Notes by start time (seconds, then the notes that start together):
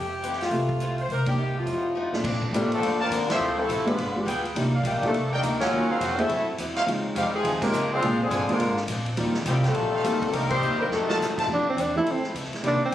Already playing: F2 E3 A3 C4 G4
0.22 F2 E3 A3 C4, closed hi-hat
0.33 snare
0.41 F4, snare, open hi-hat
0.51 C2 F2 E3 A3 C4 G4 E5, open hi-hat
0.69 kick
0.80 F2 E3 A3 C4, closed hi-hat
0.98 C5, open hi-hat
1.09 C2 C3 A#3 D#4 G4 A#4, open hi-hat
1.26 A#3 D4 D#4 G4, kick, ride
1.37 C3 A#3 D#4 G4
1.55 A2 C3 F3 F4
1.66 F2 F3 A3 D#4 F#4, open hi-hat
1.95 F3 A3 D#4 F#4
2.12 A#2 A3 C4 D4 F4, muted upright bass stroke, snare
2.24 A#2 A#3 D4 A4 C5, kick, crash
2.42 kick
2.51 A2 G3 A3 A#3 C4 D4 A4 C5, hi-hat pedal, ride
2.55 D#3 A3 C4 D4 F4 G4
2.72 D3 F3 A3 C4 A4, ride
2.76 D4
2.80 F2 A#3 D4 A4 C5, ride
3.00 D3 F3 A#3 C4 D4 A#4 C5 A5
3.10 D#2 A#3 D4 A4 C5, hi-hat pedal, ride
3.29 F3 A3 C4 D4 E4 F4 C5 E5, snare, ride
3.39 D2 D3 F3 C4
3.43 E4
3.59 C3 F3 A3 C4 E4 A4
3.69 A1 D3 F3 C4 E4, hi-hat pedal, ride
3.86 D3 F3 G#3 B3 D4 F4 G4 B4, ride
3.97 G1 G3 B3 F4 G#4, ride
4.16 G#3 B3 D4 F4 G4
4.25 D2 G3 B3 F4 G#4 B4 G5, hi-hat pedal, ride
4.45 ride
4.55 C2 C3 F3 A#3 D4 D#4 F4 G4, ride
4.74 D#4 A#4 D5 F5
4.83 A#1 A#2 C3 D#3 F3 G3 A#3 D4 D#4 G4, hi-hat pedal, ride
5.02 A3 A#3 D4 D#4 F4 G4, muted upright bass stroke, kick, ride
5.06 F3 A#3 D4 A4
5.12 C2 C3 F3 A#3 D#4, ride
5.30 D#3 G3 A#3 D4 D#4 A#4 D5 G5
5.43 D2 C3 F3 A#3 D#4, hi-hat pedal, ride
5.61 F#3 A#3 C#4 F4 F#4 C#5, snare, ride
5.71 D#2 D#3 F#3 A#3 C#4 D#4 F4 F#4
5.89 C#3 F#3 A#3 C4 D#4 F4 F#4 C5 C#5 F5, muted upright bass stroke
6.01 F2 D#3 F#3 C#4 F4, hi-hat pedal, ride
6.18 A3 C4 D4 E4 F#4 G#4 A4 E5, ride
6.29 F#2 D3 F#3 C4 E4, ride
6.58 E2 D3 F#3 C4 E4, hi-hat pedal, ride
6.75 D#4 C5 C#5 F5, snare, ride
6.86 C#2 C#3 F3 G#3 C4 C#4 D#4 F4, ride
7.15 F2 C#3 D#3 F3 G3 G#3 C4 D#4 G4 C5 C#5 F5, hi-hat pedal, ride
7.35 C3 F3 G#3 C4 D#4 G#4
7.44 D#2 C#3 F3 C4 D#4, ride
7.61 C3 F3 G#3 A#3 C4 C#4 D#4 F4 G4 A#4, kick, crash
7.72 C#2 C#3 F3 C4 D#4, hi-hat pedal
7.92 F3 G#3 C4 D4 F4 C5
8.02 A#1 A#2 G#3 A#3 C4 D4 F4, ride
8.23 D3 F3 G#3 C4 D4 G#4
8.30 G1 A#2 G#3 C4 D4 A#4 C5 G#5, hi-hat pedal, ride
8.49 D3 F3 G#3 A#3 C4 D4 F4, muted upright bass stroke, ride
8.53 A#3 D4 F4 A#4
8.60 G#1 A#2 G#3 C4 D4, ride
8.77 snare
8.87 A#1 A#2 G#3 C4 D4, hi-hat pedal, ride
9.06 ride
9.17 D#2 D#3 G3 A#3 C4 D#4 F4, ride
9.34 snare
9.46 C2 A#2 C3 D#3 F3 G3 A#3 C4 F4 G4 C5 D#5 G5, hi-hat pedal, ride
9.64 A#2 C3 G3 A3 C4 F4 A4, snare, ride
9.74 A#1 D#3 G3 C4, ride
9.79 F4
9.93 F4 C5 D#5 F5, muted upright bass stroke
10.03 D2 D#3 G3 A#3 C4 D#4 F4 G4, hi-hat pedal, ride
10.22 kick, ride
10.30 C2 C3 D#3 F3 G3 A#3 A#4, ride
10.34 A#3 D4 D#4
10.47 D#3 G3 A#3 C4 C5, kick, crash
10.51 D#4 G4
10.61 D#2 C3 F3 A#3 D#4, hi-hat pedal
10.78 D#3 G3 A#3 D4 D#4 A#4
10.82 G3
10.90 F2 C3 D#3 F3 F#3 A3 C4 D#4 A4, snare
10.95 D#4 F#4
11.08 F#3 A3 C4 D#4 F4 F#4 D#5 F5 A5, snare
11.19 F#2 F3 A3 D#4, snare, hi-hat pedal
11.24 F#4
11.38 F4 C5 E5 A5, kick, crash
11.47 F2 F3 A3 C4 E4 G4
11.52 E3 A3 C4 D4
11.69 C4
11.77 E2 F2 E3 A3 C4, hi-hat pedal, ride
11.81 D4
11.95 F3 A3 C4 E4 G4 A4
12.05 D2 F2 E3 A3 C4, ride
12.11 C4
12.23 F3 C4 E4 A4, muted upright bass stroke, snare
12.35 C#2 F2 E3 A3 C4, hi-hat pedal, ride
12.45 snare
12.52 muted upright bass stroke, snare, ride
12.63 C2 C3 D#3 G3 A#3 C4 D4 D#4 G4 A#4, ride
12.82 C4, muted upright bass stroke